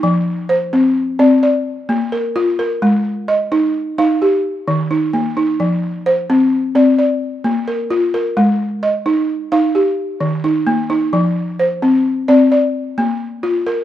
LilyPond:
\new Staff \with { instrumentName = "Balafon" } { \time 12/8 \key f \dorian \tempo 4. = 87 << { ees'8 r8 c''4. d''8 d''4. bes'4 bes'8~ | bes'8 r8 ees''4. f''8 g'4. ees'4 ees'8~ | ees'8 r8 c''4. d''8 d''4. bes'4 bes'8~ | bes'8 r8 ees''4. f''8 g'4. ees'4 ees'8~ |
ees'8 r8 c''4. d''8 d''4. r4 bes'8 | } \\ { f4 r8 c'4 c'8 r4 bes4 f'4 | aes4 r8 ees'4 ees'8 r4 ees4 bes4 | f4 r8 c'4 c'8 r4 bes4 f'4 | aes4 r8 ees'4 ees'8 r4 ees4 bes4 |
f4 r8 c'4 c'8 r4 bes4 f'4 | } >> }